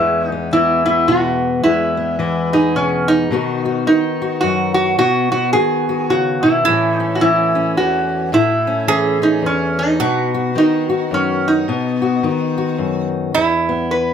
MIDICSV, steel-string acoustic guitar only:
0, 0, Header, 1, 2, 480
1, 0, Start_track
1, 0, Key_signature, 4, "major"
1, 0, Tempo, 557103
1, 1414, Time_signature, 3, 2, 24, 8
1, 12180, End_track
2, 0, Start_track
2, 0, Title_t, "Steel-string acoustic guitar"
2, 0, Program_c, 0, 25
2, 0, Note_on_c, 0, 40, 66
2, 0, Note_on_c, 0, 56, 53
2, 0, Note_on_c, 0, 59, 64
2, 266, Note_off_c, 0, 59, 0
2, 276, Note_on_c, 0, 59, 55
2, 453, Note_on_c, 0, 52, 64
2, 454, Note_off_c, 0, 59, 0
2, 458, Note_on_c, 0, 59, 61
2, 738, Note_off_c, 0, 59, 0
2, 742, Note_on_c, 0, 59, 55
2, 927, Note_on_c, 0, 47, 59
2, 1387, Note_off_c, 0, 47, 0
2, 1389, Note_off_c, 0, 52, 0
2, 1394, Note_off_c, 0, 56, 0
2, 1403, Note_off_c, 0, 40, 0
2, 1413, Note_on_c, 0, 40, 65
2, 1418, Note_on_c, 0, 56, 58
2, 1696, Note_off_c, 0, 59, 0
2, 1699, Note_on_c, 0, 59, 54
2, 1886, Note_on_c, 0, 52, 67
2, 1888, Note_off_c, 0, 59, 0
2, 1891, Note_on_c, 0, 59, 66
2, 2187, Note_on_c, 0, 68, 63
2, 2369, Note_on_c, 0, 47, 61
2, 2826, Note_off_c, 0, 52, 0
2, 2828, Note_off_c, 0, 47, 0
2, 2831, Note_off_c, 0, 56, 0
2, 2833, Note_off_c, 0, 68, 0
2, 2848, Note_on_c, 0, 47, 71
2, 2853, Note_off_c, 0, 40, 0
2, 2859, Note_on_c, 0, 51, 58
2, 2863, Note_off_c, 0, 59, 0
2, 2863, Note_on_c, 0, 59, 58
2, 2867, Note_on_c, 0, 63, 56
2, 2873, Note_on_c, 0, 66, 64
2, 3144, Note_off_c, 0, 66, 0
2, 3147, Note_on_c, 0, 66, 64
2, 3324, Note_off_c, 0, 51, 0
2, 3331, Note_off_c, 0, 47, 0
2, 3334, Note_off_c, 0, 63, 0
2, 3334, Note_on_c, 0, 51, 65
2, 3338, Note_on_c, 0, 63, 66
2, 3629, Note_off_c, 0, 66, 0
2, 3632, Note_on_c, 0, 66, 64
2, 3815, Note_on_c, 0, 42, 61
2, 4271, Note_off_c, 0, 42, 0
2, 4271, Note_off_c, 0, 51, 0
2, 4272, Note_off_c, 0, 63, 0
2, 4275, Note_off_c, 0, 59, 0
2, 4277, Note_off_c, 0, 66, 0
2, 4293, Note_on_c, 0, 47, 69
2, 4299, Note_on_c, 0, 59, 57
2, 4573, Note_off_c, 0, 59, 0
2, 4584, Note_on_c, 0, 59, 54
2, 4773, Note_on_c, 0, 51, 64
2, 4774, Note_off_c, 0, 47, 0
2, 4781, Note_on_c, 0, 66, 65
2, 5064, Note_off_c, 0, 66, 0
2, 5074, Note_on_c, 0, 66, 63
2, 5253, Note_on_c, 0, 49, 63
2, 5540, Note_off_c, 0, 49, 0
2, 5543, Note_on_c, 0, 47, 58
2, 5711, Note_off_c, 0, 51, 0
2, 5714, Note_off_c, 0, 59, 0
2, 5719, Note_off_c, 0, 66, 0
2, 5736, Note_off_c, 0, 47, 0
2, 5746, Note_on_c, 0, 45, 67
2, 5751, Note_on_c, 0, 52, 58
2, 5759, Note_on_c, 0, 57, 55
2, 5765, Note_on_c, 0, 61, 60
2, 6026, Note_off_c, 0, 61, 0
2, 6030, Note_on_c, 0, 61, 59
2, 6217, Note_off_c, 0, 52, 0
2, 6220, Note_on_c, 0, 52, 67
2, 6221, Note_off_c, 0, 61, 0
2, 6224, Note_on_c, 0, 61, 60
2, 6503, Note_off_c, 0, 61, 0
2, 6506, Note_on_c, 0, 61, 59
2, 6701, Note_on_c, 0, 40, 58
2, 6702, Note_off_c, 0, 45, 0
2, 7156, Note_off_c, 0, 61, 0
2, 7157, Note_off_c, 0, 52, 0
2, 7163, Note_off_c, 0, 57, 0
2, 7170, Note_on_c, 0, 45, 74
2, 7176, Note_on_c, 0, 57, 62
2, 7180, Note_off_c, 0, 40, 0
2, 7471, Note_on_c, 0, 61, 63
2, 7647, Note_off_c, 0, 61, 0
2, 7647, Note_on_c, 0, 52, 67
2, 7657, Note_on_c, 0, 61, 72
2, 7932, Note_off_c, 0, 61, 0
2, 7942, Note_on_c, 0, 61, 65
2, 8119, Note_on_c, 0, 40, 67
2, 8135, Note_off_c, 0, 45, 0
2, 8590, Note_off_c, 0, 52, 0
2, 8594, Note_off_c, 0, 57, 0
2, 8595, Note_off_c, 0, 61, 0
2, 8609, Note_off_c, 0, 40, 0
2, 8617, Note_on_c, 0, 47, 73
2, 8622, Note_on_c, 0, 59, 61
2, 8912, Note_on_c, 0, 66, 68
2, 9090, Note_on_c, 0, 51, 67
2, 9094, Note_on_c, 0, 63, 63
2, 9099, Note_off_c, 0, 47, 0
2, 9383, Note_off_c, 0, 66, 0
2, 9387, Note_on_c, 0, 66, 66
2, 9572, Note_on_c, 0, 42, 68
2, 10032, Note_off_c, 0, 42, 0
2, 10032, Note_off_c, 0, 51, 0
2, 10034, Note_off_c, 0, 63, 0
2, 10037, Note_off_c, 0, 66, 0
2, 10063, Note_on_c, 0, 47, 71
2, 10066, Note_off_c, 0, 59, 0
2, 10069, Note_on_c, 0, 59, 63
2, 10354, Note_on_c, 0, 66, 63
2, 10539, Note_on_c, 0, 51, 68
2, 10541, Note_off_c, 0, 47, 0
2, 10547, Note_on_c, 0, 63, 66
2, 10824, Note_off_c, 0, 66, 0
2, 10835, Note_on_c, 0, 66, 64
2, 11014, Note_on_c, 0, 42, 60
2, 11472, Note_off_c, 0, 42, 0
2, 11475, Note_off_c, 0, 51, 0
2, 11478, Note_off_c, 0, 59, 0
2, 11479, Note_off_c, 0, 63, 0
2, 11480, Note_off_c, 0, 66, 0
2, 11504, Note_on_c, 0, 40, 66
2, 11794, Note_on_c, 0, 59, 57
2, 12180, Note_off_c, 0, 40, 0
2, 12180, Note_off_c, 0, 59, 0
2, 12180, End_track
0, 0, End_of_file